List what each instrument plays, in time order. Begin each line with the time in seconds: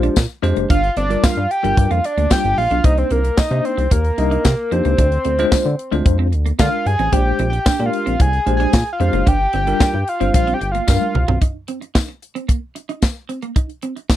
Already playing: tine electric piano G#3 D4 G4 C5, analog synth lead F4
0.03 clean electric guitar D4, closed hi-hat
0.16 analog synth bass A#2, muted clean electric guitar stroke, kick, snare, clap, tambourine
0.43 analog synth bass F2, tine electric piano G#3 D4 G4 C5, clean electric guitar C4, closed hi-hat
0.56 analog synth bass F#1, clean electric guitar A#3, closed hi-hat
0.70 analog synth bass G1, clean electric guitar D4, analog synth lead F5, kick, closed hi-hat
0.84 closed hi-hat
0.97 analog synth bass G1, clean electric guitar C4, analog synth lead D5, closed hi-hat
1.10 tine electric piano G3 D4 F4 A#4, muted clean electric guitar stroke, closed hi-hat
1.24 analog synth bass G2, clean electric guitar A#3, analog synth lead F5, kick, snare, clap, tambourine
1.37 analog synth bass G2, muted clean electric guitar stroke
1.51 analog synth lead G5, closed hi-hat
1.63 analog synth bass G1, tine electric piano G3 D4 F4 A#4, clean electric guitar G3, closed hi-hat
1.77 analog synth bass G2, kick, closed hi-hat
1.91 analog synth bass F2, clean electric guitar A#3, analog synth lead F5, closed hi-hat
2.04 analog synth lead D5, muted clean electric guitar stroke, closed hi-hat
2.17 analog synth bass D2, clean electric guitar A#3, closed hi-hat
2.30 tine electric piano G3 D4 F4 G4, clean electric guitar C4, analog synth lead G5, kick, snare, clap, tambourine
2.44 analog synth bass G1, closed hi-hat
2.58 analog synth bass A#1, analog synth lead F5, muted clean electric guitar stroke, open hi-hat
2.71 analog synth bass B1, clean electric guitar D4, closed hi-hat
2.84 analog synth bass C2, tine electric piano A#3 D4 D#4 C5, clean electric guitar D#4, analog synth lead D#5, kick, closed hi-hat
2.98 analog synth lead C5, closed hi-hat
3.10 analog synth bass C2, clean electric guitar C4, analog synth lead A#4, closed hi-hat
3.24 muted clean electric guitar stroke, closed hi-hat
3.37 analog synth bass C3, clean electric guitar D#4, analog synth lead D#5, kick, snare, clap, tambourine
3.51 analog synth bass C3, tine electric piano A#3 D4 D#4 C5, muted clean electric guitar stroke, closed hi-hat
3.65 analog synth lead C5, closed hi-hat
3.77 analog synth bass C2, clean electric guitar C4, closed hi-hat
3.91 analog synth bass D#2, clean electric guitar A#3, analog synth lead A#4, kick, closed hi-hat
4.04 closed hi-hat
4.18 analog synth bass C2, tine electric piano A#3 D4 D#4 D#5, muted clean electric guitar stroke, closed hi-hat
4.31 clean electric guitar D#4, closed hi-hat
4.45 analog synth bass C3, muted clean electric guitar stroke, kick, snare, clap, tambourine
4.71 analog synth bass F2, tine electric piano A#3 D4 D#4 G4, clean electric guitar C4, analog synth lead C5, closed hi-hat
4.85 analog synth bass C#2, clean electric guitar A#3, closed hi-hat
4.98 analog synth bass D2, clean electric guitar D4, kick, closed hi-hat
5.12 closed hi-hat
5.25 analog synth bass D2, clean electric guitar C4, closed hi-hat
5.39 tine electric piano G#3 D4 F4 C5, muted clean electric guitar stroke, closed hi-hat
5.52 analog synth bass D3, clean electric guitar D4, kick, snare, clap, tambourine
5.65 analog synth bass D3, muted clean electric guitar stroke, closed hi-hat
5.79 closed hi-hat
5.92 analog synth bass D2, tine electric piano G#3 D4 F4 C5, clean electric guitar C4, closed hi-hat
6.06 analog synth bass F2, kick, closed hi-hat
6.19 clean electric guitar C4
6.32 analog synth bass D2, muted clean electric guitar stroke, closed hi-hat
6.46 clean electric guitar A#3, closed hi-hat
6.59 analog synth bass D3, clean electric guitar G#3, tine electric piano G#3 D4 F4 A#4, analog synth lead F5, kick, snare, clap, tambourine
6.86 analog synth bass G2, analog synth lead G#5, muted clean electric guitar stroke, closed hi-hat
6.99 analog synth bass A1, clean electric guitar C4, closed hi-hat
7.12 analog synth bass A#1, tine electric piano G#3 D4 G4 C5, clean electric guitar D4, analog synth lead G5, kick, closed hi-hat
7.39 analog synth bass A#1, clean electric guitar C4, closed hi-hat
7.50 analog synth lead G5, muted clean electric guitar stroke, closed hi-hat
7.66 analog synth bass A#2, clean electric guitar D4, kick, snare, clap, tambourine
7.79 analog synth bass A#2, tine electric piano G#3 D4 G4 A#4, muted clean electric guitar stroke, closed hi-hat
7.86 analog synth lead F5
7.93 closed hi-hat
8.06 analog synth bass A#1, clean electric guitar C4, closed hi-hat
8.20 analog synth bass C2, clean electric guitar A#3, analog synth lead G#5, kick, closed hi-hat
8.33 closed hi-hat
8.46 analog synth bass A#1, tine electric piano G#3 D4 G4 C5, muted clean electric guitar stroke, closed hi-hat
8.57 clean electric guitar D4, analog synth lead G#5, closed hi-hat
8.73 analog synth bass A#2, muted clean electric guitar stroke, kick, snare, clap, tambourine
8.87 closed hi-hat
8.93 analog synth lead F5
9.00 analog synth bass F2, tine electric piano G#3 D4 G4 C5, clean electric guitar C4, closed hi-hat
9.13 analog synth bass F#1, clean electric guitar A#3, closed hi-hat
9.26 analog synth bass G1, clean electric guitar D4, analog synth lead G5, kick, closed hi-hat
9.53 analog synth bass G1, clean electric guitar C4, analog synth lead G5, closed hi-hat
9.67 tine electric piano G3 D4 F4 A#4, muted clean electric guitar stroke, closed hi-hat
9.80 analog synth bass G2, clean electric guitar D4, kick, snare, clap, tambourine
9.94 analog synth bass G2, muted clean electric guitar stroke
10.08 analog synth lead F5, closed hi-hat
10.20 analog synth bass G1, tine electric piano G3 D4 F4 C5, clean electric guitar C4, closed hi-hat
10.34 analog synth bass A#1, analog synth lead F5, kick, closed hi-hat
10.47 clean electric guitar C4, closed hi-hat
10.54 analog synth lead G5
10.61 analog synth bass G1, muted clean electric guitar stroke, closed hi-hat
10.72 clean electric guitar A#3, analog synth lead F5, closed hi-hat
10.88 analog synth bass G2, clean electric guitar G3, tine electric piano G3 D4 F4 A#4, analog synth lead F5, kick, snare, tambourine
11.01 high tom
11.15 analog synth bass C2, muted clean electric guitar stroke, mid tom
11.28 analog synth bass B1, clean electric guitar C4, floor tom
11.41 clean electric guitar D#4, kick, closed hi-hat
11.68 clean electric guitar C4, closed hi-hat
11.81 muted clean electric guitar stroke, closed hi-hat
11.95 clean electric guitar D#4, kick, snare, clap, tambourine
12.09 muted clean electric guitar stroke
12.22 closed hi-hat
12.35 clean electric guitar C4, closed hi-hat
12.48 clean electric guitar A#3, kick, closed hi-hat
12.75 muted clean electric guitar stroke, closed hi-hat
12.89 clean electric guitar D#4, closed hi-hat
13.02 muted clean electric guitar stroke, kick, snare, clap, tambourine
13.29 clean electric guitar C4, closed hi-hat
13.42 clean electric guitar A#3, closed hi-hat
13.56 clean electric guitar D#4, kick, closed hi-hat
13.69 closed hi-hat
13.82 clean electric guitar C4, closed hi-hat
13.96 muted clean electric guitar stroke, closed hi-hat
14.10 clean electric guitar D#4, kick, snare, clap, tambourine